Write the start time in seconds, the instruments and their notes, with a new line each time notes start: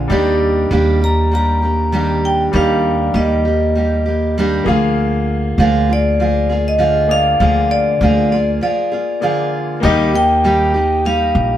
Already playing: steel-string acoustic guitar A#2 A#3 D4 G#4
0.08 upright bass D#2, steel-string acoustic guitar D#3 G3 A#3 D4, grand piano G3 D#4 D5
0.12 steel-string acoustic guitar G4
0.71 upright bass D#2, steel-string acoustic guitar D#3 G3 A#3 D4 G4
1.01 steel-string acoustic guitar A#3 D4 G4, vibraphone A#5
1.31 steel-string acoustic guitar G3 A#3 D4 G4, vibraphone A#5
1.62 steel-string acoustic guitar A#3 D4 G4
1.92 steel-string acoustic guitar D#3 G3 A#3 D4 G4
2.25 vibraphone G5
2.52 upright bass D#2, steel-string acoustic guitar D#3 G3 A#3 D4 G4, grand piano G3 D#4 A#4
2.56 vibraphone F5
3.14 upright bass D#2, steel-string acoustic guitar D#3 G3 A#3 G4, vibraphone D#5
3.45 steel-string acoustic guitar A#3 G4
3.75 steel-string acoustic guitar G3 A#3 G4
4.06 steel-string acoustic guitar A#3 G4
4.38 steel-string acoustic guitar D#3 G3 A#3 D4 G4
4.64 upright bass D2, grand piano A#3 G#4, steel-string acoustic guitar G#4
4.68 steel-string acoustic guitar D3 F3 A#3 F4, grand piano F5
5.58 upright bass D2, steel-string acoustic guitar D3 F3 A#3 F4 G#4
5.89 steel-string acoustic guitar A#3 F4 G#4, vibraphone D5
6.20 steel-string acoustic guitar F3 A#3 F4 G#4
6.49 steel-string acoustic guitar A#3 F4 G#4
6.68 vibraphone D#5
6.78 steel-string acoustic guitar D3 F3 A#3 F4 G#4
7.07 grand piano A#3 G#4 D5, vibraphone F5
7.40 upright bass D2, steel-string acoustic guitar D3 F3 A#3 F4 G#4
7.71 vibraphone D5
8.01 upright bass D2, steel-string acoustic guitar D3 F3 A#3 F4 G#4
8.32 steel-string acoustic guitar A#3 F4 G#4, vibraphone D5
8.61 steel-string acoustic guitar F3 A#3 F4 G#4, vibraphone D5
8.92 steel-string acoustic guitar A#3 F4 G#4
9.20 steel-string acoustic guitar D3 F3 A#3 F4 G#4, grand piano A#3 G#4 D5
9.80 upright bass D#2, steel-string acoustic guitar D#3 G3 A#3, grand piano A#3 D#4 G4
9.85 steel-string acoustic guitar D#4 G4, grand piano D#5
10.13 steel-string acoustic guitar A#3 D#4 G4, vibraphone G5
10.44 steel-string acoustic guitar D#3 G3 A#3 D#4 G4
10.74 steel-string acoustic guitar A#3 D#4 G4
11.05 steel-string acoustic guitar G3 A#3 D#4 G4, vibraphone F5
11.35 upright bass A#1